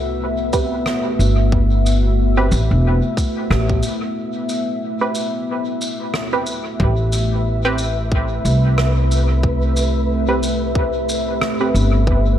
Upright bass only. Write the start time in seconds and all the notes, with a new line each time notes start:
Already playing: C2
1.19 G1
2.52 A1
2.71 E1
3.50 A1
6.80 A1
8.45 C2
11.74 G1